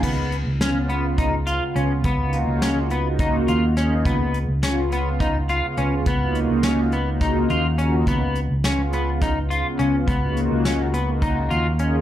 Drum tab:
CC |x------|-------|-------|-------|
HH |-xxxxxx|xxxxxxx|xxxxxxx|xxxxxxx|
SD |--o----|--o---o|--o----|--o-o--|
BD |o---o--|o---o--|o---o--|o---o--|

CC |-------|-------|
HH |xxxxxxx|xxxxxxx|
SD |--o-o--|--o----|
BD |o---o--|o---o--|